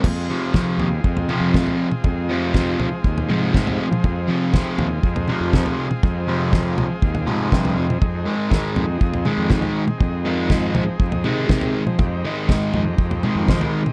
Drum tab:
CC |x---------------|----------------|----------------|----------------|
SD |----o-------o---|----o-------o---|----o-------o---|----o-------o---|
T2 |----------o-o--o|------o---o-o--o|----------o-o--o|------o---o-o--o|
FT |o---o-o--o---o--|o---o-o--o---o--|o---o-o--o---o--|o---o-o--o---o--|
BD |o---o---o---o---|o---o---o---o---|o---o---o---o---|o---o---o---o---|

CC |----------------|----------------|----------------|
SD |----o-------o---|----o-------o---|----o-------o---|
T2 |----------o-o--o|------o---o-o--o|----------o-o--o|
FT |o---o-o--o---o--|o---o-o--o---o--|o---o-o--o---o--|
BD |o---o---o---o---|o---o---o---o---|o---o---o---o---|